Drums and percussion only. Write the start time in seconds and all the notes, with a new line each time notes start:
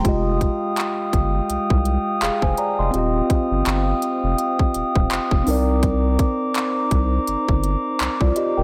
0.05 kick, closed hi-hat
0.41 kick, closed hi-hat
0.77 clap, closed hi-hat
1.13 kick, closed hi-hat
1.50 closed hi-hat
1.70 kick
1.85 closed hi-hat
2.22 clap, closed hi-hat
2.42 kick
2.57 closed hi-hat
2.94 closed hi-hat
3.30 kick, closed hi-hat
3.66 clap, closed hi-hat
4.02 closed hi-hat
4.38 closed hi-hat
4.59 kick
4.74 closed hi-hat
4.96 kick
5.10 clap, closed hi-hat
5.31 kick
5.47 open hi-hat
5.83 kick, closed hi-hat
6.19 kick, closed hi-hat
6.55 clap, closed hi-hat
6.91 kick, closed hi-hat
7.27 closed hi-hat
7.49 kick
7.64 closed hi-hat
8.00 clap, closed hi-hat
8.21 kick
8.36 closed hi-hat